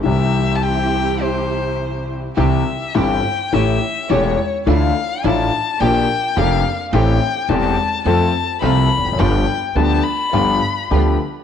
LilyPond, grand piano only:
\new Staff \with { instrumentName = "Grand piano" } { \clef bass \time 4/4 \key c \major \tempo 4 = 105 <c, c e g c' g'>1 | <c, c e g c' g'>8 r8 <g,, g, e g c' g'>8 r8 <a,, a, e a cis' g'>8 r8 <e,, e, e a cis' g'>8 r8 | <d, d e a d' f'>8 r8 <a,, a, e a d' f'>8 r8 <bes,, bes, f bes d' g'>8 r8 <f,, f, f bes d' g'>8 r8 | <a,, a, e a c' g'>8 r8 <e,, e, e a c' g'>8 r8 <f, f a c' a'>8 r8 <c, c f a c' a'>8 r32 e,32 f,32 fis,32 |
<g,, g, f b d' g'>8 r8 <d, d f b d' g'>8 r8 <g,, g, f b d' g'>8 r8 <d, d f b d' g'>8 r8 | }